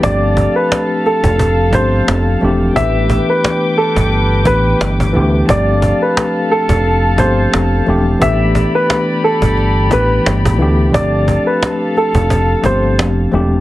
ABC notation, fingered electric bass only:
X:1
M:4/4
L:1/16
Q:"Swing 16ths" 1/4=88
K:Gmix
V:1 name="Fingered electric bass" clef=bass
G,,,3 z4 F,,,3 G,,,2 F,,,2 E,,,2 | A,,,3 z4 G,,,3 A,,,2 G,,,2 D,,2 | G,,,3 z4 F,,,3 G,,,2 F,,,2 E,,,2 | A,,,3 z4 G,,,3 A,,,2 G,,,2 D,,2 |
G,,,3 z4 F,,,3 G,,,2 F,,,2 E,,,2 |]